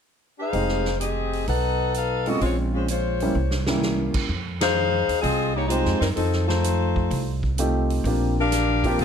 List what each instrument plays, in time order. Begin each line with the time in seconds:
0.39 saxophone section D#4 G#4 C5 F5
0.53 upright bass F1, grand piano G#3 C4 D#4 G4, open hi-hat
0.68 snare
0.85 snare
1.00 saxophone section C4 G4 G#4 D#5, closed hi-hat
1.33 open hi-hat
1.47 upright bass B1, saxophone section D#4 A4 B4 F#5, open hi-hat
1.94 saxophone section D#4 A4 B4 F5, closed hi-hat
2.26 grand piano G#3 C4 C#4 F4, saxophone section B3 F#4 A4 D#5, open hi-hat
2.41 upright bass A#1, saxophone section G#3 C4 F4 C#5, open hi-hat
2.73 saxophone section G#3 C#4 F4 C5
2.88 saxophone section G#3 F4 C5 C#5, closed hi-hat
3.20 grand piano G3 A#3 C#4 E4, open hi-hat
3.35 upright bass C2
3.51 snare
3.66 grand piano G3 A#3 C#4 E4, snare
3.83 snare
4.14 muted upright bass stroke, kick, crash
4.29 upright bass F2
4.61 saxophone section D#4 G#4 C5 F5, snare, ride
5.08 upright bass D#2, open hi-hat
5.22 upright bass C2, saxophone section C4 F4 G#4 D#5, open hi-hat
5.55 saxophone section A#3 D#4 G4 C#5
5.68 saxophone section G#3 D#4 F4 C5, grand piano G#3 C4 D#4 F4 G4, closed hi-hat
5.85 upright bass F2, snare
6.00 upright bass F#2, saxophone section G3 C4 D#4 A#4, snare, open hi-hat
6.15 upright bass F2, saxophone section F3 C4 D#4 A4, open hi-hat
6.33 snare
6.48 saxophone section A3 D#4 F4 C5, snare
6.64 closed hi-hat
6.96 kick
7.11 upright bass C2, open hi-hat
7.43 kick
7.58 grand piano A3 C4 D#4 F4 G4, closed hi-hat
7.90 open hi-hat
8.04 upright bass A#1, grand piano A#3 C4 D4 F4 G4, open hi-hat
8.40 saxophone section D4 G4 A#4 F5
8.52 snare, closed hi-hat
8.84 grand piano A#3 C4 D4 F4 G4, kick, open hi-hat
8.99 upright bass F1, saxophone section C4 F4 G#4 D#5, open hi-hat